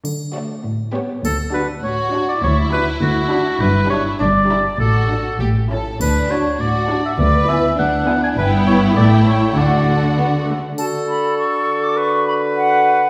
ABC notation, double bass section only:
X:1
M:2/4
L:1/8
Q:1/4=101
K:D
V:1 name="Double bass section" clef=bass
z4 | D,,2 z2 | D,,2 z2 | G,,,2 G,,,2 |
A,,,2 A,,,2 | D,,2 z2 | D,,2 z2 | G,,,2 A,,,2 |
D,,2 z2 | z4 | z4 |]